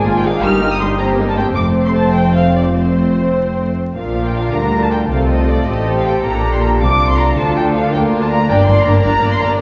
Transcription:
Already playing: double bass section G#1, cello section G#2, violin section G#5
0.06 viola section A#3 F4, violin section F4 G#4
0.17 violin section G5
0.25 viola section G#3 D4, violin section G#4 A#4 F5
0.43 double bass section G1, cello section G2, viola section G3 D#4, violin section G4 A#4 F6
0.62 viola section A#3 G4, violin section D#4 G4
0.73 violin section D#6
0.81 viola section G3 D#4, violin section G4 A#4 C6
0.99 viola section A#3 C4, violin section G4 C5 A#5
1.19 viola section G3 A#3, violin section D#4 A#4
1.28 violin section A5
1.37 viola section A#3 C4, violin section G4 C5 G5
1.56 double bass section F1, cello section F2, viola section A3 C4, violin section C4 C5 D6
1.86 violin section C6
1.94 violin section A5
2.14 violin section G5
2.35 violin section F5
2.56 violin section D5
2.74 viola section A3 C4, violin section C4 C5
3.96 double bass section A#1, cello section A#2, viola section F3 D4, violin section F4 A#4 F5
4.26 violin section G5
4.35 violin section F5
4.53 double bass section D2, cello section D3, viola section G3, violin section A#5
4.82 violin section A5
4.91 violin section G5
5.10 double bass section C2, cello section C3, viola section A3 C4, violin section F4 A4 F5
5.29 violin section D#5
5.48 violin section D5
5.67 double bass section A1, cello section A2, viola section C4, violin section G4 D#5
5.97 violin section F5
6.06 violin section G5
6.23 double bass section A#1, cello section A#2, viola section A#3 D4, violin section G4 A#5
6.53 violin section C6
6.62 violin section A#5
6.81 double bass section C2, cello section C3, viola section G3 D4, violin section F4 D6
7.09 violin section C6
7.18 violin section A#5
7.38 double bass section D2, cello section D3, viola section F3 D4, violin section A4 A5
7.56 violin section G5
7.74 violin section F5
7.92 cello section D2, double bass section D2, viola section A#3 D4, violin section F4 A#4 G5
8.22 violin section A5
8.30 violin section A#5
8.49 double bass section G1, cello section G2, viola section A#3 D4, violin section A#4 D5 G5
8.68 double bass section G1, cello section G2, viola section A#3 D4, violin section A#4 D5 C6
8.85 double bass section G1, cello section G2, viola section A#3 D4, violin section A#4 D5 A#5
9.03 double bass section G1, cello section G2, viola section A#3 D4, violin section A#4 D5 A#5
9.22 double bass section G1, cello section G2, viola section A#3 D4, violin section A#4 D5
9.33 violin section C6
9.40 double bass section G1, cello section G2, viola section A#3 D4, violin section A#4 D5 A#5

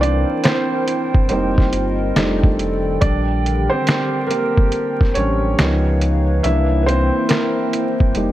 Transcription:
Already playing: sub bass C2, felt piano E3 A#3 C4 D4 C5, ambient pad E4 A#4 C5 G5
0.01 felt piano D4 D5, closed hi-hat
0.44 felt piano C4 C5, snare, closed hi-hat
0.88 closed hi-hat
1.14 sub bass G1, kick
1.29 sub bass F1, felt piano G3 A#3 C4 D#4 C5, ambient pad F4 A#4 D#5, closed hi-hat
1.58 kick, snare
1.73 sub bass G1, closed hi-hat
2.15 sub bass F1, ambient pad D#3 A4 D5 G5, felt piano G3 A3 D4 D#4, snare, closed hi-hat
2.44 kick
2.59 closed hi-hat
3.01 sub bass A#1, ambient pad D3 G4 A#4, felt piano G3 D4 D5, kick, closed hi-hat
3.46 closed hi-hat
3.70 felt piano C4 C5
3.87 snare, closed hi-hat
4.27 felt piano A#3 A#4, closed hi-hat
4.57 sub bass G1, kick
4.72 closed hi-hat
5.01 kick, snare
5.14 sub bass A1, felt piano G3 C#4 D4 C5 C#5, closed hi-hat
5.58 sub bass C#2, felt piano F3 B3 D#4, ambient pad D#4 B4 C#5 F5, snare, closed hi-hat
6.01 closed hi-hat
6.43 sub bass C2, felt piano E3 A#3 D4 E4 E5, ambient pad A#3 E4 C5 G5, closed hi-hat
6.82 felt piano B4 C5
6.88 felt piano C4, closed hi-hat
7.29 felt piano A#3 A#4, snare, closed hi-hat
7.73 closed hi-hat
8.00 sub bass G1, kick
8.15 sub bass F1, felt piano G3 A#3 D#4, ambient pad F4 D#5 G5, closed hi-hat

